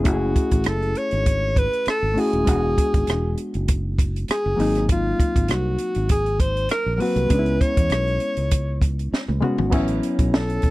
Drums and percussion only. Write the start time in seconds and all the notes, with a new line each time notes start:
0.05 kick, closed hi-hat
0.36 kick, closed hi-hat
0.51 kick, closed hi-hat
0.64 cross-stick, closed hi-hat
0.83 closed hi-hat
0.95 closed hi-hat
1.11 closed hi-hat
1.26 kick, closed hi-hat
1.56 kick, closed hi-hat
1.73 closed hi-hat
1.86 cross-stick, closed hi-hat
2.18 open hi-hat
2.33 closed hi-hat
2.47 kick, closed hi-hat
2.78 kick, closed hi-hat
2.94 kick, closed hi-hat
3.07 cross-stick, closed hi-hat
3.38 closed hi-hat
3.54 closed hi-hat
3.68 kick, closed hi-hat
3.98 kick, closed hi-hat
4.16 closed hi-hat
4.28 cross-stick, closed hi-hat
4.60 open hi-hat
4.75 cross-stick, closed hi-hat
4.89 kick, closed hi-hat
5.20 kick, closed hi-hat
5.36 kick, closed hi-hat
5.48 cross-stick, closed hi-hat
5.79 closed hi-hat
5.95 closed hi-hat
6.09 kick, closed hi-hat
6.26 closed hi-hat
6.40 kick, closed hi-hat
6.57 closed hi-hat
6.69 cross-stick, closed hi-hat
7.00 open hi-hat
7.16 closed hi-hat
7.30 kick, closed hi-hat
7.46 closed hi-hat
7.61 kick, closed hi-hat
7.77 kick, closed hi-hat
7.90 cross-stick, closed hi-hat
8.08 closed hi-hat
8.20 closed hi-hat
8.37 closed hi-hat
8.51 kick, closed hi-hat
8.82 kick, closed hi-hat
8.99 closed hi-hat
9.14 snare
9.28 high tom
9.42 mid tom
9.58 floor tom
9.72 kick, crash
9.88 closed hi-hat
10.03 closed hi-hat
10.19 kick, closed hi-hat
10.34 snare
10.50 closed hi-hat
10.62 kick, closed hi-hat